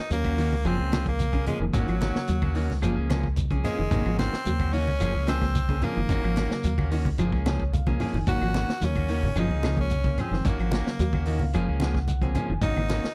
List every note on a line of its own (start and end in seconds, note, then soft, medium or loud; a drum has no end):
0.10 0.52 D#2 medium
0.10 0.41 F#3 medium
0.10 0.29 F#3 medium
0.10 0.42 A#3 medium
0.10 0.68 A#3 medium
0.10 0.42 C#4 medium
0.10 snare soft
0.10 closed hi-hat medium
0.10 shekere medium
0.24 0.37 A#3 soft
0.24 0.37 C#4 medium
0.24 0.38 F#4 medium
0.24 kick medium
0.24 closed hi-hat soft
0.24 claves medium
0.38 0.55 D#3 soft
0.38 0.56 D#3 medium
0.38 0.55 A#3 medium
0.38 0.55 C#4 medium
0.38 0.55 F#4 medium
0.38 open hi-hat medium
0.38 shekere soft
0.52 0.64 C#2 medium
0.52 high conga medium
0.65 0.78 F#1 medium
0.65 0.79 F3 medium
0.65 0.83 F3 medium
0.65 0.79 A#3 medium
0.65 1.07 C4 medium
0.65 0.78 C#4 medium
0.65 0.77 G#4 medium
0.65 closed hi-hat medium
0.65 claves medium
0.65 shekere medium
0.79 1.19 C#2 medium
0.79 0.91 A#3 soft
0.79 0.91 C#4 soft
0.79 0.92 G#4 soft
0.91 1.11 C#3 medium
0.91 1.09 F3 medium
0.91 1.09 A#3 medium
0.91 1.09 C#4 medium
0.91 1.09 G#4 medium
0.91 snare medium
0.91 closed hi-hat soft
0.91 high conga medium
0.91 claves medium
0.91 shekere soft
1.06 1.23 F3 medium
1.06 1.24 G#3 medium
1.06 1.24 A#3 medium
1.06 1.45 A#3 medium
1.06 kick medium
1.06 closed hi-hat soft
1.19 1.45 C2 medium
1.19 closed hi-hat medium
1.19 high conga medium
1.19 shekere medium
1.33 1.52 C#3 medium
1.33 1.46 A#3 soft
1.33 1.46 C#4 soft
1.33 1.46 G#4 medium
1.33 kick medium
1.33 closed hi-hat soft
1.46 1.63 F3 medium
1.46 1.60 G#3 medium
1.46 1.64 A#3 medium
1.46 1.64 C#4 medium
1.46 1.64 G#4 medium
1.46 closed hi-hat medium
1.46 high conga medium
1.46 low conga medium
1.46 claves medium
1.46 shekere soft
1.60 1.73 F1 medium
1.60 1.70 D#3 medium
1.60 1.74 F3 medium
1.60 1.74 G#3 medium
1.60 1.75 A#3 medium
1.73 1.87 G#1 loud
1.73 1.88 D#3 medium
1.73 2.79 F#3 medium
1.73 1.88 A#3 medium
1.73 1.87 C#4 medium
1.73 1.86 F#4 medium
1.73 kick medium
1.73 closed hi-hat medium
1.73 low conga medium
1.73 shekere medium
1.88 2.14 G#1 medium
1.88 2.07 F3 medium
1.88 2.00 A#3 soft
1.88 2.00 C#4 soft
1.88 2.01 F#4 medium
1.88 closed hi-hat soft
1.88 claves medium
2.01 2.18 D#3 medium
2.01 2.18 A#3 medium
2.01 2.18 C#4 medium
2.01 2.18 F#4 medium
2.01 snare medium
2.01 closed hi-hat medium
2.01 high conga medium
2.01 shekere soft
2.15 2.37 C#3 medium
2.15 2.37 F#3 medium
2.15 2.38 A#3 medium
2.15 snare medium
2.27 2.70 D#2 medium
2.27 2.47 F#3 medium
2.27 closed hi-hat medium
2.27 shekere medium
2.42 2.54 A#3 soft
2.42 2.54 C#4 soft
2.42 2.55 F#4 medium
2.42 kick medium
2.42 high conga medium
2.42 claves medium
2.55 2.72 D#3 medium
2.55 2.74 D#3 medium
2.55 2.72 A#3 medium
2.55 2.72 C#4 medium
2.55 2.73 F#4 medium
2.55 open hi-hat medium
2.55 shekere soft
2.70 2.82 C#2 medium
2.70 snare soft
2.70 high conga medium
2.82 2.96 F#1 medium
2.82 2.97 F3 medium
2.82 3.05 F3 medium
2.82 3.01 F3 medium
2.82 3.05 G#3 medium
2.82 2.96 A#3 medium
2.82 3.06 A#3 medium
2.82 2.95 C#4 medium
2.82 2.95 G#4 medium
2.82 closed hi-hat medium
2.82 claves medium
2.82 shekere medium
2.96 3.38 C#2 medium
2.96 3.08 A#3 soft
2.96 3.09 C#4 soft
2.96 3.09 G#4 medium
3.09 3.29 C#3 medium
3.09 3.26 F3 medium
3.09 3.27 A#3 medium
3.09 3.27 C#4 medium
3.09 3.27 G#4 medium
3.09 snare medium
3.09 closed hi-hat medium
3.09 high conga medium
3.09 claves medium
3.09 shekere soft
3.23 kick medium
3.36 3.63 C2 medium
3.36 closed hi-hat medium
3.36 high conga medium
3.36 shekere medium
3.50 3.70 C#3 medium
3.50 3.64 F3 medium
3.50 3.64 G#3 medium
3.50 3.63 A#3 soft
3.50 3.65 A#3 medium
3.50 3.64 C#4 soft
3.50 3.64 G#4 medium
3.50 kick medium
3.50 closed hi-hat soft
3.64 3.81 F3 medium
3.64 4.15 G#3 medium
3.64 3.81 A#3 medium
3.64 3.82 C#4 medium
3.64 3.82 G#4 medium
3.64 snare soft
3.64 closed hi-hat medium
3.64 low conga medium
3.64 claves medium
3.64 shekere soft
3.78 3.90 F1 medium
3.78 3.87 D#3 medium
3.90 4.05 G#1 loud
3.90 4.09 C#3 medium
3.90 4.05 D#3 medium
3.90 4.10 F#3 medium
3.90 4.05 A#3 medium
3.90 4.10 A#3 medium
3.90 4.05 C#4 medium
3.90 4.04 F#4 medium
3.90 kick medium
3.90 closed hi-hat medium
3.90 low conga medium
3.90 shekere medium
4.05 4.31 G#1 medium
4.05 4.24 F3 medium
4.05 4.17 A#3 soft
4.05 4.17 C#4 soft
4.05 4.18 F#4 medium
4.05 claves medium
4.18 4.35 D#3 medium
4.18 4.35 A#3 medium
4.18 4.75 C4 medium
4.18 4.36 C#4 medium
4.18 4.36 F#4 medium
4.18 snare medium
4.18 closed hi-hat soft
4.18 high conga medium
4.18 shekere soft
4.32 snare medium
4.32 closed hi-hat soft
4.45 4.88 D#2 medium
4.45 4.76 C#3 medium
4.45 4.77 F#3 medium
4.45 4.65 F#3 medium
4.45 4.78 A#3 medium
4.45 closed hi-hat medium
4.45 shekere medium
4.59 4.72 A#3 soft
4.59 4.72 C#4 soft
4.59 4.72 F#4 medium
4.59 kick medium
4.59 closed hi-hat soft
4.59 high conga medium
4.59 claves medium
4.72 4.90 D#3 medium
4.72 4.91 D#3 medium
4.72 4.90 A#3 medium
4.72 5.28 C#4 loud
4.72 4.90 C#4 medium
4.72 4.90 F#4 medium
4.72 open hi-hat medium
4.72 shekere soft
4.88 5.00 C#2 medium
4.88 high conga medium
5.00 5.14 F#1 loud
5.00 5.15 F3 medium
5.00 5.19 F3 medium
5.00 5.14 A#3 medium
5.00 5.14 C#4 medium
5.00 5.13 G#4 medium
5.00 closed hi-hat medium
5.00 claves medium
5.00 shekere medium
5.14 5.56 C#2 medium
5.14 5.26 A#3 soft
5.14 5.27 C#4 medium
5.14 5.27 G#4 soft
5.27 5.47 C#3 medium
5.27 5.44 F3 medium
5.27 5.44 A#3 medium
5.27 5.86 C4 loud
5.27 5.45 C#4 medium
5.27 5.45 G#4 medium
5.27 snare medium
5.27 closed hi-hat soft
5.27 high conga medium
5.27 claves medium
5.27 shekere soft
5.41 5.59 F3 medium
5.41 5.60 G#3 medium
5.41 5.60 A#3 medium
5.41 kick medium
5.41 snare soft
5.41 closed hi-hat soft
5.55 5.81 C2 loud
5.55 closed hi-hat medium
5.55 high conga medium
5.55 shekere medium
5.69 5.88 C#3 medium
5.69 5.81 A#3 soft
5.69 5.81 C#4 soft
5.69 5.82 G#4 soft
5.69 kick medium
5.69 closed hi-hat soft
5.81 5.99 F3 medium
5.81 5.99 A#3 medium
5.81 6.92 A#3 medium
5.81 5.99 C#4 medium
5.81 5.99 G#4 medium
5.81 closed hi-hat medium
5.81 high conga medium
5.81 low conga medium
5.81 claves medium
5.81 shekere soft
5.95 6.08 F#1 medium
5.95 6.06 D#3 medium
5.95 6.09 F3 medium
5.95 6.10 G#3 medium
5.95 6.10 A#3 medium
6.09 6.22 G#1 loud
6.09 6.23 D#3 medium
6.09 6.23 A#3 medium
6.09 6.22 C#4 medium
6.09 6.22 F#4 medium
6.09 kick medium
6.09 closed hi-hat medium
6.09 low conga medium
6.09 shekere medium
6.23 6.49 G#1 medium
6.23 6.43 F3 medium
6.23 6.36 A#3 soft
6.23 6.36 C#4 soft
6.23 6.36 F#4 medium
6.23 closed hi-hat soft
6.23 claves medium
6.36 6.53 D#3 medium
6.36 6.54 A#3 medium
6.36 6.54 C#4 medium
6.36 6.54 F#4 medium
6.36 snare medium
6.36 closed hi-hat medium
6.36 high conga medium
6.36 shekere soft
6.49 6.72 C#3 medium
6.49 6.72 F#3 medium
6.49 6.73 A#3 loud
6.49 snare medium
6.64 7.05 D#2 medium
6.64 6.83 F#3 medium
6.64 closed hi-hat medium
6.64 shekere medium
6.78 6.90 A#3 soft
6.78 6.91 C#4 medium
6.78 6.91 F#4 medium
6.78 kick medium
6.78 high conga medium
6.78 claves medium
6.91 7.08 D#3 medium
6.91 7.10 D#3 medium
6.91 7.08 A#3 medium
6.91 7.09 C#4 medium
6.91 7.09 F#4 medium
6.91 open hi-hat medium
6.91 shekere soft
7.05 7.18 C#2 medium
7.05 kick medium
7.05 high conga medium
7.18 7.32 F#1 medium
7.18 7.41 F3 medium
7.18 7.33 F3 medium
7.18 7.37 F3 medium
7.18 7.41 G#3 medium
7.18 7.32 A#3 medium
7.18 7.42 A#3 medium
7.18 7.31 G#4 medium
7.18 muted clean electric guitar stroke medium
7.18 closed hi-hat medium
7.18 claves medium
7.18 shekere medium
7.32 7.72 C#2 medium
7.32 7.45 A#3 medium
7.32 7.46 C#4 medium
7.32 7.46 G#4 medium
7.32 kick medium
7.45 7.64 C#3 medium
7.45 7.63 F3 medium
7.45 7.63 A#3 medium
7.45 7.63 C#4 medium
7.45 7.63 G#4 medium
7.45 7.71 C#5 medium
7.45 snare medium
7.45 closed hi-hat soft
7.45 high conga medium
7.45 claves medium
7.45 shekere soft
7.60 kick medium
7.72 7.98 C2 medium
7.72 7.98 F5 medium
7.72 closed hi-hat medium
7.72 high conga medium
7.72 shekere medium
7.86 8.06 C#3 medium
7.86 7.99 F3 medium
7.86 8.00 G#3 medium
7.86 8.00 A#3 medium
7.86 7.99 A#3 soft
7.86 8.00 C#4 medium
7.86 8.00 G#4 medium
7.86 kick medium
7.86 closed hi-hat soft
7.86 high conga medium
8.00 8.17 F3 medium
8.00 8.17 A#3 medium
8.00 8.17 C#4 medium
8.00 8.18 G#4 medium
8.00 8.26 G#5 medium
8.00 open hi-hat medium
8.00 low conga medium
8.00 claves medium
8.00 shekere soft
8.13 8.26 F#1 medium
8.13 8.24 D#3 medium
8.13 low conga medium
8.27 8.40 G#1 medium
8.27 8.45 C#3 medium
8.27 8.42 D#3 medium
8.27 8.46 F#3 medium
8.27 8.42 A#3 medium
8.27 8.46 A#3 medium
8.27 8.41 C#4 medium
8.27 8.40 F#4 medium
8.27 8.86 F#4 loud
8.27 kick medium
8.27 closed hi-hat medium
8.27 low conga medium
8.27 shekere medium
8.41 8.67 G#1 medium
8.41 8.60 F3 medium
8.41 8.54 A#3 soft
8.41 8.55 C#4 medium
8.41 8.55 F#4 medium
8.41 claves medium
8.54 8.72 D#3 medium
8.54 8.72 A#3 medium
8.54 8.72 C#4 medium
8.54 8.72 F#4 medium
8.54 snare medium
8.54 closed hi-hat soft
8.54 high conga medium
8.54 shekere soft
8.68 snare medium
8.68 closed hi-hat soft
8.81 9.24 D#2 medium
8.81 9.12 C#3 medium
8.81 9.13 F#3 medium
8.81 9.00 F#3 medium
8.81 9.13 A#3 medium
8.81 9.41 C#4 medium
8.81 snare soft
8.81 closed hi-hat medium
8.81 shekere medium
8.96 9.09 A#3 soft
8.96 9.09 C#4 soft
8.96 9.09 F#4 soft
8.96 kick medium
8.96 closed hi-hat soft
8.96 high conga medium
8.96 claves medium
9.08 9.27 D#3 medium
9.08 9.26 D#3 medium
9.08 9.27 A#3 medium
9.08 9.27 C#4 medium
9.08 9.27 F#4 medium
9.08 open hi-hat medium
9.08 shekere soft
9.22 9.35 G#1 medium
9.22 high conga medium
9.22 low conga medium
9.36 9.49 F#1 loud
9.36 9.51 F3 medium
9.36 9.55 F3 medium
9.36 9.51 A#3 medium
9.36 9.50 C#4 medium
9.36 9.79 D#4 medium
9.36 9.50 G#4 medium
9.36 closed hi-hat medium
9.36 claves medium
9.36 shekere medium
9.49 9.90 C#2 medium
9.49 9.63 A#3 soft
9.49 9.64 C#4 soft
9.49 9.64 G#4 medium
9.49 high conga medium
9.63 9.82 C#3 medium
9.63 9.81 F3 medium
9.63 9.81 A#3 medium
9.63 9.81 C#4 medium
9.63 9.81 G#4 medium
9.63 snare medium
9.63 closed hi-hat soft
9.63 high conga medium
9.63 claves medium
9.63 shekere soft
9.77 9.94 F3 medium
9.77 9.95 G#3 medium
9.77 9.95 A#3 medium
9.77 kick medium
9.77 closed hi-hat soft
9.81 10.22 C#4 medium
9.90 10.16 C2 medium
9.90 closed hi-hat medium
9.90 high conga medium
9.90 shekere medium
10.04 10.24 C#3 medium
10.04 10.19 A#3 soft
10.04 10.18 C#4 soft
10.04 muted clean electric guitar stroke soft
10.04 kick medium
10.04 closed hi-hat soft
10.18 10.35 F3 medium
10.18 10.47 C4 medium
10.18 10.36 C#4 medium
10.18 10.36 G#4 medium
10.18 closed hi-hat soft
10.18 low conga medium
10.18 claves medium
10.18 shekere soft
10.31 10.44 F#1 medium
10.31 10.41 D#3 medium
10.31 10.45 F3 medium
10.31 10.46 G#3 medium
10.31 10.46 C4 medium
10.31 snare soft
10.45 10.58 G#1 loud
10.45 10.59 D#3 medium
10.45 10.60 A#3 medium
10.45 10.59 C#4 medium
10.45 10.58 F#4 medium
10.45 kick medium
10.45 closed hi-hat medium
10.45 low conga medium
10.45 shekere medium
10.49 11.52 A#3 medium
10.59 10.85 G#1 medium
10.59 10.78 F3 medium
10.59 10.72 C#4 medium
10.59 10.72 F#4 medium
10.59 muted clean electric guitar stroke soft
10.59 closed hi-hat soft
10.59 claves medium
10.71 10.89 D#3 medium
10.71 10.89 A#3 medium
10.71 10.89 C#4 medium
10.71 10.90 F#4 medium
10.71 snare medium
10.71 closed hi-hat soft
10.71 high conga medium
10.71 shekere soft
10.86 11.08 C#3 medium
10.86 11.09 F#3 medium
10.86 11.09 A#3 medium
10.86 snare medium
10.99 11.41 D#2 medium
10.99 11.18 F#3 medium
10.99 closed hi-hat medium
10.99 shekere medium
11.13 11.25 A#3 soft
11.13 11.26 C#4 medium
11.13 11.26 F#4 medium
11.13 kick medium
11.13 high conga medium
11.13 claves medium
11.25 11.43 D#3 medium
11.25 11.45 D#3 medium
11.25 11.44 A#3 medium
11.25 11.44 C#4 medium
11.25 11.44 F#4 medium
11.25 11.41 D#5 medium
11.25 open hi-hat medium
11.25 shekere soft
11.39 11.53 C#2 medium
11.39 11.54 F5 medium
11.39 high conga medium
11.39 low conga medium
11.53 11.67 F#1 medium
11.53 11.76 F3 medium
11.53 11.68 F3 medium
11.53 11.73 F3 medium
11.53 11.76 G#3 medium
11.53 11.68 A#3 medium
11.53 11.77 A#3 medium
11.53 11.68 C#4 medium
11.53 11.67 G#4 medium
11.53 11.80 F5 medium
11.53 closed hi-hat medium
11.53 claves medium
11.53 shekere medium
11.68 12.08 C#2 medium
11.68 11.80 A#3 soft
11.68 11.80 C#4 medium
11.68 11.81 G#4 medium
11.80 12.00 C#3 medium
11.80 11.98 F3 medium
11.80 11.98 A#3 medium
11.80 11.98 C#4 medium
11.80 11.99 G#4 medium
11.80 12.07 F#5 medium
11.80 snare medium
11.80 closed hi-hat medium
11.80 high conga medium
11.80 claves medium
11.80 shekere soft
11.94 kick medium
11.94 snare soft
12.08 12.34 C2 medium
12.08 12.34 F#5 medium
12.08 closed hi-hat medium
12.08 high conga medium
12.08 shekere medium
12.21 12.41 C#3 medium
12.21 12.35 F3 medium
12.21 12.35 G#3 medium
12.21 12.34 A#3 soft
12.21 12.36 C4 loud
12.21 12.34 C#4 soft
12.21 12.35 G#4 medium
12.21 kick medium
12.21 closed hi-hat soft
12.34 12.52 F3 medium
12.34 12.52 A#3 medium
12.34 12.53 C#4 medium
12.34 12.53 G#4 medium
12.34 12.60 G#5 medium
12.34 closed hi-hat medium
12.34 high conga medium
12.34 low conga medium
12.34 claves medium
12.34 shekere soft
12.49 12.61 F1 medium
12.49 12.59 D#3 medium
12.61 12.75 G#1 loud
12.61 12.80 C#3 medium
12.61 12.77 D#3 medium
12.61 12.81 F#3 medium
12.61 12.76 A#3 medium
12.61 12.81 A#3 medium
12.61 12.76 C#4 medium
12.61 13.14 D#4 loud
12.61 12.75 F#4 medium
12.61 kick medium
12.61 closed hi-hat medium
12.61 low conga medium
12.61 shekere medium
12.76 13.03 G#1 medium
12.76 12.96 D#3 medium
12.76 12.88 A#3 soft
12.76 12.89 F#4 medium
12.76 muted clean electric guitar stroke soft
12.76 high conga medium
12.76 claves medium
12.88 13.06 D#3 medium
12.88 13.07 A#3 medium
12.88 13.07 C#4 medium
12.88 13.07 F#4 medium
12.88 snare medium
12.88 closed hi-hat soft
12.88 high conga loud
12.88 shekere soft
13.03 snare medium
13.03 closed hi-hat soft